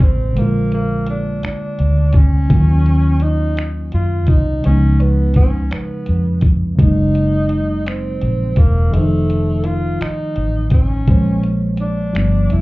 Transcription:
Already playing: C#3 G#3 A#3 F4 C5
0.00 A1 C4, kick
0.33 D3 G#3
0.37 A#1 A#3 C5, closed hi-hat
0.42 F4
0.72 A#3, closed hi-hat
1.07 D4, closed hi-hat
1.43 D4, finger snap, muted fingered electric bass stroke, closed hi-hat
1.79 D2, closed hi-hat
2.13 C#4, kick, closed hi-hat
2.48 D#2 D#3 F#3 A#3, kick, closed hi-hat
2.54 C#4 F4
2.86 closed hi-hat
3.20 D#4, closed hi-hat
3.57 finger snap, closed hi-hat
3.92 F#2 F4, closed hi-hat
4.27 C2 D#4, kick, closed hi-hat
4.60 C#3 F3, closed hi-hat
4.65 C#2 G#3 B3 C#4
4.70 D#4
5.00 B3, closed hi-hat
5.34 C#4, kick, closed hi-hat
5.71 B3, finger snap, muted fingered electric bass stroke, closed hi-hat
6.06 F2, closed hi-hat
6.41 kick, closed hi-hat
6.76 F#1 C#3 F#3, kick, closed hi-hat
6.80 G#3 A#3 D#4
6.84 D#4
7.15 closed hi-hat
7.49 closed hi-hat
7.87 C4, finger snap, closed hi-hat
8.21 A#1, closed hi-hat
8.56 E1 A#3, kick, closed hi-hat
8.91 F1 D#3 F3 A3, closed hi-hat
8.97 D#4 C5
9.30 closed hi-hat
9.64 F4, closed hi-hat
10.01 D#4, finger snap, muted fingered electric bass stroke, closed hi-hat
10.36 A1, closed hi-hat
10.70 C#4, kick, closed hi-hat
11.07 A#1 F3 G#3 A#3 C5, kick, closed hi-hat
11.12 C#5
11.43 closed hi-hat
11.77 D4, closed hi-hat
12.13 G1 F3 G3 A3 B3, finger snap, closed hi-hat
12.18 D4
12.50 F1 E4, closed hi-hat

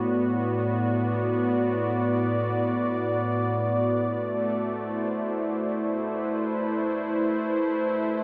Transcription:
Already playing: A2 B3 F#4 B4 D5
4.18 A3
4.75 E4 C5
5.98 B4

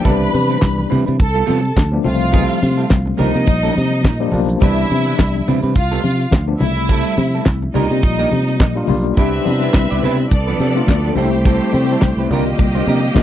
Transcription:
0.01 C2 E3 G3 C4 E4 A4 B4 A5, kick, closed hi-hat, muted conga, low conga
0.06 G3 B3 D4 B4 B5
0.33 C3, muted clean electric guitar stroke, open hi-hat, high conga
0.50 G3 C4 E4 B4, closed hi-hat
0.62 C2, kick, snare, clap, closed hi-hat, muted conga
0.78 muted clean electric guitar stroke, high conga
0.90 C3 G3 C4 E4 B4, open hi-hat, low conga
1.06 C3 G3 C4 E4 B4, closed hi-hat
1.19 C2 A4 A5, muted clean electric guitar stroke, kick, closed hi-hat
1.34 G3 B3 F4 A4
1.46 C3 G3 B3 F4 A4, open hi-hat, muted conga, high conga
1.63 muted clean electric guitar stroke, closed hi-hat
1.76 D2, muted clean electric guitar stroke, kick, snare, clap, closed hi-hat, muted conga, high conga
1.92 F3 A3 B3 D4, muted clean electric guitar stroke
2.04 C2 F3 G3 A3 C4 F4 F5, open hi-hat, high conga, low conga
2.20 muted clean electric guitar stroke, closed hi-hat
2.31 F#3 B3 D#4 G#4, kick, closed hi-hat, muted conga, low conga
2.43 G3 C4 E4 A4
2.62 C3, muted clean electric guitar stroke, open hi-hat, muted conga, high conga
2.77 G3 C4 E4 A4, closed hi-hat
2.90 C2, kick, snare, clap, closed hi-hat, muted conga
3.06 muted clean electric guitar stroke, high conga
3.17 C2 F3 G3 A#3 D4 D#4 G4 A#4 D#5, open hi-hat, muted conga, low conga
3.34 C3 A#3 D4 G4 A#4, closed hi-hat
3.46 A#1, kick, closed hi-hat
3.63 A#3 D4 G4 A#4
3.76 C3, muted clean electric guitar stroke, open hi-hat, high conga
3.92 muted clean electric guitar stroke, closed hi-hat
4.03 A#2, muted clean electric guitar stroke, kick, snare, clap, closed hi-hat, high conga
4.20 F3 G3 A#3 D4, muted clean electric guitar stroke
4.32 B1 F3 G3 A#3 D4, open hi-hat, muted conga, high conga, low conga
4.48 muted clean electric guitar stroke, closed hi-hat
4.61 C2 E3 G3 B3 C4 D4 E4 B4 E5, kick, closed hi-hat, muted conga, low conga
4.90 C3, open hi-hat, high conga
5.06 G3 C4 E4 B4, closed hi-hat
5.18 C2, muted clean electric guitar stroke, kick, snare, clap, closed hi-hat
5.35 muted clean electric guitar stroke, high conga
5.48 C3 G3 C4 E4 B4, open hi-hat, low conga
5.63 C3 G3 C4 E4 B4, closed hi-hat
5.75 C2 F4 F5, muted clean electric guitar stroke, kick, closed hi-hat
5.91 G3 B3 F4 A4
6.04 C3, muted clean electric guitar stroke, open hi-hat, muted conga, high conga
6.20 muted clean electric guitar stroke, closed hi-hat
6.31 D2, muted clean electric guitar stroke, kick, snare, clap, closed hi-hat, muted conga, high conga
6.47 F3 A3 B3 D4, muted clean electric guitar stroke
6.59 C2 G3 G#3 C4 E4 E5, open hi-hat, high conga, low conga
6.66 A3
6.76 muted clean electric guitar stroke, closed hi-hat
6.88 G3 C4 E4 A4, kick, closed hi-hat, low conga
7.17 C3, muted clean electric guitar stroke, open hi-hat, muted conga, high conga
7.33 G3 C4 E4 A4, closed hi-hat
7.46 C2, kick, snare, clap, closed hi-hat
7.62 muted clean electric guitar stroke, high conga
7.74 C2 G3 A#3 D4 D#4 F4 G4 A#4 D#5, open hi-hat, low conga
7.90 C3 A#3 D4 G4, closed hi-hat
8.02 A#1, muted clean electric guitar stroke, kick, closed hi-hat, muted conga
8.19 A#3 D4 G4 A#4
8.31 C3, open hi-hat, muted conga, high conga
8.48 muted clean electric guitar stroke, closed hi-hat
8.60 A#2, muted clean electric guitar stroke, kick, snare, clap, closed hi-hat, muted conga, high conga
8.75 G3 A#3 D4 F4, muted clean electric guitar stroke
8.88 B1 G3 A#3 D4 F4, open hi-hat, high conga, low conga
9.04 muted clean electric guitar stroke, closed hi-hat
9.17 C2 G3 B3 C4 D4 E4 G4 B4 E5, kick, closed hi-hat
9.45 C3 G3 B3 D4 D#4, open hi-hat, muted conga, high conga
9.53 E4
9.62 B3 E4 G4 B4, closed hi-hat
9.74 C2, muted clean electric guitar stroke, kick, snare, clap, closed hi-hat
9.91 C2 B3 E4 G4 D5
10.02 C3 B3 E4 G4 B4, open hi-hat, muted conga, low conga
10.18 muted clean electric guitar stroke, closed hi-hat
10.31 C2 B3 A4 D5, muted clean electric guitar stroke, kick, closed hi-hat
10.47 F3 B3 D4 B4
10.59 C3 F3 B3 D4 A4, open hi-hat, high conga
10.75 A3 B3 D4 F4, muted clean electric guitar stroke, closed hi-hat
10.87 D2, muted clean electric guitar stroke, kick, snare, clap, closed hi-hat, muted conga, high conga
11.04 F3 B3 D4 A4
11.15 C2 G3 A3 C4 D4 E4 G4 A4 C5, open hi-hat, high conga, low conga
11.24 E4
11.32 muted clean electric guitar stroke, closed hi-hat
11.44 G3 C4 E4 A4, kick, closed hi-hat, muted conga
11.73 C3 G3 A3 C4 E4, muted clean electric guitar stroke, open hi-hat, high conga
11.90 G3 C4 E4 A4, closed hi-hat
12.02 C2, kick, snare, clap, closed hi-hat
12.17 C2 G3 C4 E4 B4
12.30 C2 D3 G3 A#3 D4 F4 G4 A#4 D#5, open hi-hat, muted conga, low conga
12.47 muted clean electric guitar stroke, closed hi-hat
12.58 C2, muted clean electric guitar stroke, kick, closed hi-hat, muted conga
12.75 A#3 D4 G4 C5
12.87 C3 A#3 D4 G4 A#4, open hi-hat, high conga
13.02 muted clean electric guitar stroke, closed hi-hat
13.14 A#2 G3 A#3 D4 F4, muted clean electric guitar stroke, kick, snare, clap, closed hi-hat, muted conga, high conga

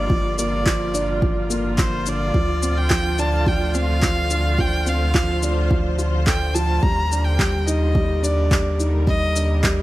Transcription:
Already playing: G1 D3 F3 G3 A#3 D4 F4 A#4 D5
0.10 F3, kick
0.38 A#3 D5, shaker
0.66 F3, kick, clap
0.94 D4, shaker
1.22 F3, kick
1.50 A#3, shaker
1.78 F3 C5, kick, clap
2.06 D4 D5, shaker
2.34 D2 F3, kick
2.63 C4, shaker
2.69 A3
2.77 G5
2.90 F3, kick, clap
3.18 D4 A5, shaker
3.46 F3 G5, kick
3.74 C4 F5, shaker
4.02 F3, kick, clap
4.30 D4, shaker
4.35 C5
4.58 F3 G5, kick
4.86 C4 F5, shaker
5.14 F3, kick, clap
5.43 D4, shaker
5.71 F3, kick
5.98 F4, shaker
6.27 A4 G5, kick, clap
6.55 F3 A5, shaker
6.83 D#2 G3 A#5, kick
7.06 G3
7.11 D4, shaker
7.24 G5
7.39 G3, kick, clap
7.66 D#4 D#5, shaker
7.95 G3, kick
7.99 A#4
8.23 D4 D5, shaker
8.51 G3, kick, clap
8.80 D#4, shaker
9.07 G3 D#5, kick
9.36 D4, shaker
9.63 G3, kick, clap

